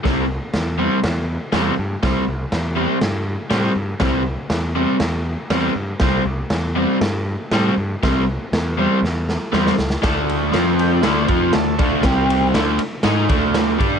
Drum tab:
CC |x---x---x---x---|x---x---x---x---|x---x---x---x---|x---x---x---x---|
RD |----------------|----------------|----------------|----------------|
SD |o---o---o---o---|o---o---o---o---|o---o---o---o---|o---o---o---o---|
BD |o---------------|o---------------|o---------------|o---------------|

CC |x---x-----------|----------------|----------------|
RD |----------------|x-x-x-x-x-x-x-x-|x-x-x-x-x-x-x-x-|
SD |o---o---o-o-oooo|o---o---o---o---|o---o---o---o---|
BD |o---------------|o---------o---o-|o---------o---o-|